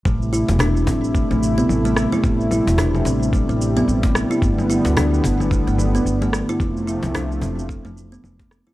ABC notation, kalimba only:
X:1
M:4/4
L:1/16
Q:"Swing 16ths" 1/4=110
K:Am
V:1 name="Kalimba"
A, z E z D2 C2 A, A, z B, z A,2 E | A, z E z D2 C2 A, A, z B, z A,2 E | A, z E z D2 B,2 A, A, z B, z A,2 E | A, z E z D2 C2 A, A, z B, z A,2 E |]